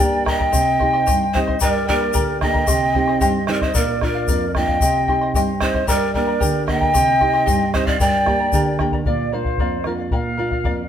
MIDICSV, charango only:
0, 0, Header, 1, 2, 480
1, 0, Start_track
1, 0, Tempo, 535714
1, 477, Time_signature, 2, 2, 24, 8
1, 4794, Tempo, 529568
1, 9811, End_track
2, 0, Start_track
2, 0, Title_t, "Charango"
2, 0, Program_c, 0, 24
2, 0, Note_on_c, 0, 67, 73
2, 0, Note_on_c, 0, 70, 80
2, 0, Note_on_c, 0, 74, 81
2, 0, Note_on_c, 0, 79, 82
2, 0, Note_on_c, 0, 82, 86
2, 213, Note_off_c, 0, 79, 0
2, 216, Note_off_c, 0, 70, 0
2, 218, Note_off_c, 0, 74, 0
2, 223, Note_off_c, 0, 82, 0
2, 224, Note_on_c, 0, 79, 61
2, 227, Note_on_c, 0, 70, 61
2, 229, Note_on_c, 0, 74, 72
2, 232, Note_off_c, 0, 67, 0
2, 234, Note_on_c, 0, 82, 76
2, 336, Note_off_c, 0, 82, 0
2, 342, Note_off_c, 0, 74, 0
2, 344, Note_off_c, 0, 70, 0
2, 346, Note_on_c, 0, 82, 56
2, 350, Note_off_c, 0, 79, 0
2, 353, Note_on_c, 0, 74, 48
2, 355, Note_on_c, 0, 70, 48
2, 465, Note_on_c, 0, 67, 76
2, 466, Note_off_c, 0, 70, 0
2, 469, Note_off_c, 0, 74, 0
2, 470, Note_off_c, 0, 82, 0
2, 470, Note_on_c, 0, 72, 75
2, 470, Note_on_c, 0, 79, 78
2, 472, Note_on_c, 0, 75, 72
2, 474, Note_on_c, 0, 84, 87
2, 698, Note_off_c, 0, 79, 0
2, 700, Note_off_c, 0, 72, 0
2, 708, Note_off_c, 0, 75, 0
2, 709, Note_on_c, 0, 79, 56
2, 710, Note_off_c, 0, 84, 0
2, 711, Note_on_c, 0, 72, 64
2, 712, Note_off_c, 0, 67, 0
2, 719, Note_on_c, 0, 75, 61
2, 721, Note_on_c, 0, 84, 70
2, 824, Note_off_c, 0, 84, 0
2, 833, Note_off_c, 0, 75, 0
2, 834, Note_off_c, 0, 79, 0
2, 835, Note_off_c, 0, 72, 0
2, 835, Note_on_c, 0, 84, 66
2, 843, Note_on_c, 0, 75, 58
2, 848, Note_on_c, 0, 72, 49
2, 948, Note_off_c, 0, 72, 0
2, 950, Note_off_c, 0, 75, 0
2, 951, Note_off_c, 0, 84, 0
2, 955, Note_on_c, 0, 67, 86
2, 957, Note_on_c, 0, 79, 84
2, 959, Note_on_c, 0, 72, 85
2, 961, Note_on_c, 0, 75, 102
2, 962, Note_on_c, 0, 84, 89
2, 1188, Note_off_c, 0, 79, 0
2, 1193, Note_off_c, 0, 72, 0
2, 1195, Note_off_c, 0, 75, 0
2, 1198, Note_off_c, 0, 67, 0
2, 1199, Note_on_c, 0, 79, 64
2, 1202, Note_off_c, 0, 84, 0
2, 1204, Note_on_c, 0, 72, 64
2, 1205, Note_on_c, 0, 75, 62
2, 1211, Note_on_c, 0, 84, 65
2, 1310, Note_off_c, 0, 84, 0
2, 1315, Note_off_c, 0, 75, 0
2, 1319, Note_off_c, 0, 72, 0
2, 1320, Note_off_c, 0, 79, 0
2, 1320, Note_on_c, 0, 84, 52
2, 1326, Note_on_c, 0, 75, 45
2, 1330, Note_on_c, 0, 72, 41
2, 1439, Note_off_c, 0, 72, 0
2, 1439, Note_on_c, 0, 67, 75
2, 1439, Note_on_c, 0, 79, 80
2, 1441, Note_off_c, 0, 84, 0
2, 1442, Note_off_c, 0, 75, 0
2, 1443, Note_on_c, 0, 70, 81
2, 1446, Note_on_c, 0, 74, 82
2, 1446, Note_on_c, 0, 82, 82
2, 1667, Note_off_c, 0, 79, 0
2, 1674, Note_off_c, 0, 70, 0
2, 1675, Note_off_c, 0, 74, 0
2, 1678, Note_on_c, 0, 79, 65
2, 1679, Note_off_c, 0, 82, 0
2, 1681, Note_off_c, 0, 67, 0
2, 1684, Note_on_c, 0, 70, 58
2, 1686, Note_on_c, 0, 74, 65
2, 1690, Note_on_c, 0, 82, 64
2, 1789, Note_off_c, 0, 82, 0
2, 1797, Note_off_c, 0, 74, 0
2, 1800, Note_off_c, 0, 79, 0
2, 1800, Note_on_c, 0, 82, 58
2, 1803, Note_off_c, 0, 70, 0
2, 1808, Note_on_c, 0, 74, 46
2, 1816, Note_on_c, 0, 70, 44
2, 1910, Note_off_c, 0, 70, 0
2, 1911, Note_off_c, 0, 74, 0
2, 1913, Note_off_c, 0, 82, 0
2, 1913, Note_on_c, 0, 67, 82
2, 1918, Note_on_c, 0, 79, 86
2, 1921, Note_on_c, 0, 70, 81
2, 1922, Note_on_c, 0, 74, 87
2, 1923, Note_on_c, 0, 82, 88
2, 2149, Note_off_c, 0, 79, 0
2, 2150, Note_off_c, 0, 70, 0
2, 2156, Note_off_c, 0, 74, 0
2, 2157, Note_off_c, 0, 67, 0
2, 2157, Note_off_c, 0, 82, 0
2, 2160, Note_on_c, 0, 79, 61
2, 2161, Note_on_c, 0, 70, 55
2, 2167, Note_on_c, 0, 74, 69
2, 2167, Note_on_c, 0, 82, 69
2, 2262, Note_off_c, 0, 82, 0
2, 2267, Note_off_c, 0, 74, 0
2, 2272, Note_on_c, 0, 82, 51
2, 2274, Note_off_c, 0, 70, 0
2, 2278, Note_on_c, 0, 74, 44
2, 2281, Note_off_c, 0, 79, 0
2, 2285, Note_on_c, 0, 70, 45
2, 2391, Note_off_c, 0, 70, 0
2, 2393, Note_off_c, 0, 74, 0
2, 2393, Note_on_c, 0, 67, 76
2, 2394, Note_on_c, 0, 72, 81
2, 2394, Note_on_c, 0, 79, 75
2, 2396, Note_on_c, 0, 75, 83
2, 2397, Note_off_c, 0, 82, 0
2, 2401, Note_on_c, 0, 84, 84
2, 2621, Note_off_c, 0, 79, 0
2, 2628, Note_off_c, 0, 72, 0
2, 2631, Note_off_c, 0, 75, 0
2, 2631, Note_on_c, 0, 79, 56
2, 2635, Note_off_c, 0, 84, 0
2, 2638, Note_off_c, 0, 67, 0
2, 2639, Note_on_c, 0, 72, 64
2, 2642, Note_on_c, 0, 75, 63
2, 2645, Note_on_c, 0, 84, 64
2, 2743, Note_off_c, 0, 84, 0
2, 2753, Note_off_c, 0, 75, 0
2, 2754, Note_on_c, 0, 84, 57
2, 2756, Note_off_c, 0, 72, 0
2, 2757, Note_off_c, 0, 79, 0
2, 2764, Note_on_c, 0, 75, 52
2, 2766, Note_on_c, 0, 72, 47
2, 2868, Note_off_c, 0, 72, 0
2, 2868, Note_off_c, 0, 75, 0
2, 2870, Note_off_c, 0, 84, 0
2, 2875, Note_on_c, 0, 67, 90
2, 2878, Note_on_c, 0, 79, 97
2, 2879, Note_on_c, 0, 72, 89
2, 2879, Note_on_c, 0, 75, 94
2, 2881, Note_on_c, 0, 84, 102
2, 3108, Note_off_c, 0, 79, 0
2, 3113, Note_off_c, 0, 72, 0
2, 3117, Note_off_c, 0, 75, 0
2, 3118, Note_off_c, 0, 67, 0
2, 3119, Note_on_c, 0, 79, 61
2, 3121, Note_off_c, 0, 84, 0
2, 3124, Note_on_c, 0, 72, 60
2, 3128, Note_on_c, 0, 75, 64
2, 3132, Note_on_c, 0, 84, 59
2, 3229, Note_off_c, 0, 84, 0
2, 3233, Note_off_c, 0, 75, 0
2, 3240, Note_off_c, 0, 79, 0
2, 3240, Note_on_c, 0, 84, 54
2, 3242, Note_off_c, 0, 72, 0
2, 3244, Note_on_c, 0, 75, 43
2, 3252, Note_on_c, 0, 72, 41
2, 3348, Note_off_c, 0, 72, 0
2, 3351, Note_on_c, 0, 70, 72
2, 3356, Note_off_c, 0, 75, 0
2, 3359, Note_on_c, 0, 74, 81
2, 3360, Note_off_c, 0, 84, 0
2, 3360, Note_on_c, 0, 77, 74
2, 3586, Note_off_c, 0, 70, 0
2, 3592, Note_off_c, 0, 74, 0
2, 3596, Note_off_c, 0, 77, 0
2, 3596, Note_on_c, 0, 70, 56
2, 3603, Note_on_c, 0, 74, 58
2, 3607, Note_on_c, 0, 77, 65
2, 3704, Note_off_c, 0, 77, 0
2, 3715, Note_off_c, 0, 74, 0
2, 3715, Note_on_c, 0, 77, 55
2, 3718, Note_off_c, 0, 70, 0
2, 3726, Note_on_c, 0, 74, 47
2, 3829, Note_off_c, 0, 74, 0
2, 3834, Note_off_c, 0, 77, 0
2, 3836, Note_on_c, 0, 70, 79
2, 3840, Note_on_c, 0, 74, 72
2, 3844, Note_on_c, 0, 77, 84
2, 4065, Note_off_c, 0, 70, 0
2, 4072, Note_off_c, 0, 74, 0
2, 4075, Note_on_c, 0, 70, 54
2, 4077, Note_off_c, 0, 77, 0
2, 4083, Note_on_c, 0, 74, 63
2, 4088, Note_on_c, 0, 77, 65
2, 4182, Note_off_c, 0, 77, 0
2, 4193, Note_off_c, 0, 74, 0
2, 4193, Note_on_c, 0, 77, 52
2, 4196, Note_off_c, 0, 70, 0
2, 4204, Note_on_c, 0, 74, 38
2, 4312, Note_off_c, 0, 74, 0
2, 4314, Note_off_c, 0, 77, 0
2, 4316, Note_on_c, 0, 67, 75
2, 4317, Note_on_c, 0, 72, 69
2, 4318, Note_on_c, 0, 79, 76
2, 4322, Note_on_c, 0, 75, 79
2, 4325, Note_on_c, 0, 84, 76
2, 4539, Note_off_c, 0, 79, 0
2, 4544, Note_off_c, 0, 72, 0
2, 4548, Note_off_c, 0, 75, 0
2, 4550, Note_on_c, 0, 79, 64
2, 4554, Note_off_c, 0, 84, 0
2, 4555, Note_off_c, 0, 67, 0
2, 4555, Note_on_c, 0, 72, 55
2, 4559, Note_on_c, 0, 75, 64
2, 4564, Note_on_c, 0, 84, 62
2, 4661, Note_off_c, 0, 84, 0
2, 4670, Note_off_c, 0, 75, 0
2, 4671, Note_on_c, 0, 84, 61
2, 4672, Note_off_c, 0, 79, 0
2, 4675, Note_off_c, 0, 72, 0
2, 4681, Note_on_c, 0, 75, 50
2, 4685, Note_on_c, 0, 72, 52
2, 4790, Note_off_c, 0, 72, 0
2, 4791, Note_off_c, 0, 75, 0
2, 4793, Note_off_c, 0, 84, 0
2, 4793, Note_on_c, 0, 67, 84
2, 4797, Note_on_c, 0, 79, 90
2, 4801, Note_on_c, 0, 72, 78
2, 4802, Note_on_c, 0, 75, 90
2, 4802, Note_on_c, 0, 84, 91
2, 5024, Note_off_c, 0, 79, 0
2, 5030, Note_off_c, 0, 72, 0
2, 5032, Note_off_c, 0, 75, 0
2, 5035, Note_off_c, 0, 67, 0
2, 5035, Note_on_c, 0, 79, 57
2, 5040, Note_off_c, 0, 84, 0
2, 5041, Note_on_c, 0, 72, 62
2, 5043, Note_on_c, 0, 75, 64
2, 5050, Note_on_c, 0, 84, 69
2, 5141, Note_off_c, 0, 84, 0
2, 5147, Note_off_c, 0, 75, 0
2, 5152, Note_on_c, 0, 84, 55
2, 5156, Note_off_c, 0, 72, 0
2, 5156, Note_off_c, 0, 79, 0
2, 5158, Note_on_c, 0, 75, 44
2, 5167, Note_on_c, 0, 72, 40
2, 5265, Note_on_c, 0, 67, 81
2, 5268, Note_off_c, 0, 72, 0
2, 5269, Note_off_c, 0, 75, 0
2, 5270, Note_on_c, 0, 79, 70
2, 5272, Note_off_c, 0, 84, 0
2, 5272, Note_on_c, 0, 70, 82
2, 5273, Note_on_c, 0, 74, 84
2, 5276, Note_on_c, 0, 82, 80
2, 5497, Note_off_c, 0, 79, 0
2, 5503, Note_off_c, 0, 70, 0
2, 5507, Note_off_c, 0, 74, 0
2, 5508, Note_on_c, 0, 79, 59
2, 5511, Note_off_c, 0, 82, 0
2, 5512, Note_off_c, 0, 67, 0
2, 5514, Note_on_c, 0, 70, 60
2, 5517, Note_on_c, 0, 74, 64
2, 5522, Note_on_c, 0, 82, 64
2, 5618, Note_off_c, 0, 82, 0
2, 5625, Note_off_c, 0, 74, 0
2, 5629, Note_on_c, 0, 82, 52
2, 5633, Note_off_c, 0, 70, 0
2, 5633, Note_off_c, 0, 79, 0
2, 5636, Note_on_c, 0, 74, 47
2, 5644, Note_on_c, 0, 70, 42
2, 5739, Note_off_c, 0, 70, 0
2, 5742, Note_off_c, 0, 74, 0
2, 5742, Note_off_c, 0, 82, 0
2, 5747, Note_on_c, 0, 79, 83
2, 5748, Note_on_c, 0, 67, 78
2, 5750, Note_on_c, 0, 70, 73
2, 5753, Note_on_c, 0, 74, 86
2, 5753, Note_on_c, 0, 82, 83
2, 5976, Note_off_c, 0, 79, 0
2, 5978, Note_off_c, 0, 70, 0
2, 5982, Note_off_c, 0, 74, 0
2, 5987, Note_off_c, 0, 82, 0
2, 5987, Note_on_c, 0, 79, 64
2, 5988, Note_on_c, 0, 70, 57
2, 5993, Note_on_c, 0, 74, 58
2, 5994, Note_off_c, 0, 67, 0
2, 5998, Note_on_c, 0, 82, 76
2, 6102, Note_off_c, 0, 82, 0
2, 6108, Note_off_c, 0, 74, 0
2, 6113, Note_on_c, 0, 82, 47
2, 6114, Note_off_c, 0, 70, 0
2, 6114, Note_off_c, 0, 79, 0
2, 6119, Note_on_c, 0, 74, 42
2, 6126, Note_on_c, 0, 70, 43
2, 6231, Note_on_c, 0, 67, 77
2, 6232, Note_on_c, 0, 79, 83
2, 6233, Note_off_c, 0, 70, 0
2, 6233, Note_off_c, 0, 74, 0
2, 6235, Note_off_c, 0, 82, 0
2, 6236, Note_on_c, 0, 72, 74
2, 6236, Note_on_c, 0, 75, 80
2, 6239, Note_on_c, 0, 84, 94
2, 6456, Note_off_c, 0, 79, 0
2, 6459, Note_off_c, 0, 72, 0
2, 6467, Note_off_c, 0, 75, 0
2, 6467, Note_on_c, 0, 79, 55
2, 6469, Note_off_c, 0, 84, 0
2, 6470, Note_on_c, 0, 72, 55
2, 6476, Note_off_c, 0, 67, 0
2, 6478, Note_on_c, 0, 75, 69
2, 6480, Note_on_c, 0, 84, 73
2, 6581, Note_off_c, 0, 84, 0
2, 6587, Note_off_c, 0, 75, 0
2, 6592, Note_on_c, 0, 84, 62
2, 6594, Note_off_c, 0, 79, 0
2, 6596, Note_off_c, 0, 72, 0
2, 6598, Note_on_c, 0, 75, 56
2, 6605, Note_on_c, 0, 72, 51
2, 6705, Note_off_c, 0, 72, 0
2, 6706, Note_off_c, 0, 75, 0
2, 6707, Note_on_c, 0, 67, 89
2, 6708, Note_off_c, 0, 84, 0
2, 6711, Note_on_c, 0, 79, 85
2, 6716, Note_on_c, 0, 72, 98
2, 6717, Note_on_c, 0, 75, 88
2, 6719, Note_on_c, 0, 84, 90
2, 6949, Note_off_c, 0, 79, 0
2, 6951, Note_off_c, 0, 72, 0
2, 6954, Note_off_c, 0, 67, 0
2, 6956, Note_off_c, 0, 75, 0
2, 6959, Note_on_c, 0, 79, 56
2, 6960, Note_off_c, 0, 84, 0
2, 6962, Note_on_c, 0, 72, 65
2, 6967, Note_on_c, 0, 75, 64
2, 6970, Note_on_c, 0, 84, 70
2, 7062, Note_off_c, 0, 84, 0
2, 7070, Note_off_c, 0, 75, 0
2, 7072, Note_off_c, 0, 72, 0
2, 7073, Note_on_c, 0, 84, 50
2, 7080, Note_off_c, 0, 79, 0
2, 7081, Note_on_c, 0, 75, 50
2, 7083, Note_on_c, 0, 72, 42
2, 7195, Note_on_c, 0, 67, 73
2, 7196, Note_on_c, 0, 79, 73
2, 7197, Note_off_c, 0, 72, 0
2, 7197, Note_off_c, 0, 75, 0
2, 7197, Note_off_c, 0, 84, 0
2, 7200, Note_on_c, 0, 70, 82
2, 7200, Note_on_c, 0, 74, 75
2, 7205, Note_on_c, 0, 82, 82
2, 7429, Note_off_c, 0, 79, 0
2, 7431, Note_off_c, 0, 70, 0
2, 7438, Note_off_c, 0, 67, 0
2, 7438, Note_off_c, 0, 74, 0
2, 7439, Note_off_c, 0, 82, 0
2, 7440, Note_on_c, 0, 79, 60
2, 7442, Note_on_c, 0, 70, 57
2, 7449, Note_on_c, 0, 74, 62
2, 7450, Note_on_c, 0, 82, 74
2, 7545, Note_off_c, 0, 82, 0
2, 7552, Note_off_c, 0, 74, 0
2, 7555, Note_off_c, 0, 70, 0
2, 7556, Note_on_c, 0, 82, 52
2, 7561, Note_off_c, 0, 79, 0
2, 7563, Note_on_c, 0, 74, 48
2, 7566, Note_on_c, 0, 70, 45
2, 7673, Note_off_c, 0, 70, 0
2, 7676, Note_off_c, 0, 74, 0
2, 7678, Note_off_c, 0, 82, 0
2, 7682, Note_on_c, 0, 67, 75
2, 7684, Note_on_c, 0, 70, 70
2, 7685, Note_on_c, 0, 79, 71
2, 7687, Note_on_c, 0, 74, 78
2, 7689, Note_on_c, 0, 82, 82
2, 7904, Note_off_c, 0, 79, 0
2, 7905, Note_off_c, 0, 70, 0
2, 7913, Note_off_c, 0, 74, 0
2, 7914, Note_off_c, 0, 82, 0
2, 7914, Note_on_c, 0, 79, 64
2, 7915, Note_on_c, 0, 70, 73
2, 7921, Note_off_c, 0, 67, 0
2, 7924, Note_on_c, 0, 74, 66
2, 7924, Note_on_c, 0, 82, 70
2, 8026, Note_off_c, 0, 82, 0
2, 8032, Note_off_c, 0, 74, 0
2, 8037, Note_on_c, 0, 82, 57
2, 8038, Note_off_c, 0, 70, 0
2, 8038, Note_off_c, 0, 79, 0
2, 8043, Note_on_c, 0, 74, 49
2, 8048, Note_on_c, 0, 70, 44
2, 8146, Note_off_c, 0, 70, 0
2, 8150, Note_off_c, 0, 74, 0
2, 8156, Note_on_c, 0, 70, 71
2, 8159, Note_off_c, 0, 82, 0
2, 8161, Note_on_c, 0, 74, 70
2, 8165, Note_on_c, 0, 77, 74
2, 8385, Note_off_c, 0, 70, 0
2, 8391, Note_off_c, 0, 74, 0
2, 8396, Note_on_c, 0, 70, 57
2, 8398, Note_off_c, 0, 77, 0
2, 8402, Note_on_c, 0, 74, 62
2, 8409, Note_on_c, 0, 77, 62
2, 8506, Note_off_c, 0, 77, 0
2, 8517, Note_on_c, 0, 77, 47
2, 8518, Note_off_c, 0, 70, 0
2, 8521, Note_off_c, 0, 74, 0
2, 8531, Note_on_c, 0, 74, 41
2, 8633, Note_off_c, 0, 74, 0
2, 8638, Note_off_c, 0, 77, 0
2, 8640, Note_on_c, 0, 70, 74
2, 8644, Note_on_c, 0, 74, 73
2, 8652, Note_on_c, 0, 77, 75
2, 8865, Note_off_c, 0, 70, 0
2, 8871, Note_off_c, 0, 74, 0
2, 8876, Note_on_c, 0, 70, 59
2, 8878, Note_off_c, 0, 77, 0
2, 8882, Note_on_c, 0, 74, 58
2, 8888, Note_on_c, 0, 77, 60
2, 8979, Note_off_c, 0, 77, 0
2, 8990, Note_on_c, 0, 77, 46
2, 8994, Note_off_c, 0, 74, 0
2, 8997, Note_off_c, 0, 70, 0
2, 9005, Note_on_c, 0, 74, 43
2, 9110, Note_off_c, 0, 74, 0
2, 9114, Note_off_c, 0, 77, 0
2, 9116, Note_on_c, 0, 70, 74
2, 9121, Note_on_c, 0, 74, 72
2, 9127, Note_on_c, 0, 77, 74
2, 9337, Note_off_c, 0, 70, 0
2, 9348, Note_on_c, 0, 70, 62
2, 9349, Note_off_c, 0, 74, 0
2, 9351, Note_off_c, 0, 77, 0
2, 9359, Note_on_c, 0, 74, 59
2, 9362, Note_on_c, 0, 77, 63
2, 9457, Note_off_c, 0, 77, 0
2, 9468, Note_on_c, 0, 77, 49
2, 9471, Note_off_c, 0, 74, 0
2, 9472, Note_off_c, 0, 70, 0
2, 9482, Note_on_c, 0, 74, 43
2, 9587, Note_off_c, 0, 74, 0
2, 9589, Note_off_c, 0, 77, 0
2, 9592, Note_on_c, 0, 70, 75
2, 9598, Note_on_c, 0, 74, 82
2, 9600, Note_on_c, 0, 77, 81
2, 9811, Note_off_c, 0, 70, 0
2, 9811, Note_off_c, 0, 74, 0
2, 9811, Note_off_c, 0, 77, 0
2, 9811, End_track
0, 0, End_of_file